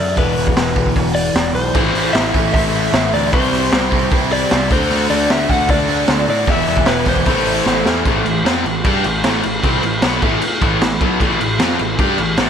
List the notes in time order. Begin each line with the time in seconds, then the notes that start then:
Already playing: D4 A4 D5 E5
0.00 F#2
0.16 E1 E2 B2 E3 B3 F#4 B4, kick, open hi-hat
0.37 E1, open hi-hat
0.47 kick
0.56 E1, snare, open hi-hat
0.75 E1 E2 B2 E3, kick, open hi-hat
0.86 kick
0.96 E1, kick, open hi-hat
1.15 D5, open hi-hat
1.34 E1 E2 B2 E3, snare, open hi-hat
1.54 B1 C5, open hi-hat
1.73 A1 A2 E3 A3 C4 E4 C5, kick, crash
1.94 A1 A2 E3 A3 C4 E4, open hi-hat
2.13 A1 A2 E3 A3 C4 E5, snare, open hi-hat
2.17 E4
2.34 A1 A2 E3 A3 C4 E4, kick, open hi-hat
2.53 A1 A2 E3 A3 C4 E4 E5, kick, open hi-hat
2.73 A2 E3 A3 C4 E4, open hi-hat
2.93 A1 A2 E3 A3 C4 E4, snare, open hi-hat
3.13 D2 A2 E3 A3 C4 E4 D5, open hi-hat
3.32 C2 C3 E3 G3 C4 E4 G4 C5 D5, kick, open hi-hat
3.52 C2 C3 E3 G3 C4 E4, open hi-hat
3.72 C2 C3 E3 G3 C4 E4, snare, open hi-hat
3.91 C2 C3 E3 G3 C4 E4, kick, open hi-hat
4.11 C2 C3 E3 G3 C4 E4, kick, open hi-hat
4.30 C3 E3 G3 C4 E4 D5, open hi-hat
4.50 C2 C3 E3 G3 C4 E4, snare, open hi-hat
4.70 D2 D3 A3 D4 F#4 A4 C5 E5, kick, open hi-hat
4.90 D2 D3 A3 D4 F#4, open hi-hat
5.09 D2 D3 A3 D4 F#4 D5, open hi-hat
5.29 D2 D3 A3 D4 F#4 E5, snare, open hi-hat
5.49 D2 D3 A3 D4 F#4 F#5, kick, open hi-hat
5.69 D2 D3 A3 D4 F#4 D5, kick, open hi-hat
5.88 D3 A3 D4 F#4, open hi-hat
6.08 D2 D3 A3 D4 F#4, snare, open hi-hat
6.27 A2 D3 A3 D4 F#4 D5, open hi-hat
6.46 E1 E2 B2 E3 G3 B3 E4 F#4 E5, kick, open hi-hat
6.67 E1 E3 G3 B3 E4, open hi-hat
6.77 kick
6.86 E1 E3 G3 B3 E4 B4, snare, open hi-hat
7.05 E1 E2 B2 E3 G3 B3 E4 C5, kick, snare, open hi-hat
7.16 kick
7.26 A1 A2 E3 A3 C4 E4 C5, kick, open hi-hat
7.45 A2 E3 A3 C4 E4, open hi-hat
7.66 A1 A2 E3 A3 C4 E4, snare
7.86 E2 A2 E3 A3 C4 E4, snare
8.05 A1 A2 E3 A3 E4 B4, kick, crash
8.25 A1 A2 E3, crash
8.44 F2 F3 C4 F4, snare, crash
8.64 A1 A2 E3, crash
8.84 G2 G3 D4 G4, kick, crash
9.04 A1 A2 E3, crash
9.24 A1 A2 E3 A3, snare, crash
9.43 A1 A2 E3, crash
9.63 C2 C3 G3 C4, kick, crash
9.83 A1 A2 E3, crash
10.02 B1 B2 F#3 B3, snare, crash
10.22 A1 A2 E3 A3, kick, crash
10.41 crash
10.61 A1 A2 E3 A3, kick, crash
10.81 A1 A2 E3, snare, crash
11.01 B1 B2 F#3 B3, kick, crash
11.20 A1 A2 E3 A3, kick, crash
11.41 A1 A2 E3, crash
11.59 F2 F3 C4 F4, snare, crash
11.79 A1 A2 E3, crash
11.99 G2 G3 D4 G4, kick, crash
12.18 A1 A2 E3, crash
12.37 A1 A2 E3 A3, snare, crash